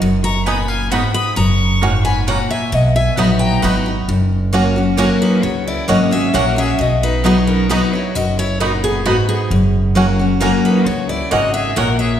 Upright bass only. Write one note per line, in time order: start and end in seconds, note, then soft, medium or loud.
0.01 1.02 F#1 medium
1.37 2.38 F#1 loud
2.72 3.06 B1 loud
3.17 3.56 A#1 medium
3.63 4.02 G#1 medium
4.08 5.09 F#1 loud
5.44 5.77 C#2 medium
5.89 6.28 G#1 loud
6.34 6.73 A#1 medium
6.80 7.81 B1 medium
8.16 9.16 F#1 medium
9.50 10.52 F#1 loud
10.86 11.20 C#2 loud
11.32 11.70 G#1 medium
11.77 12.15 A#1 medium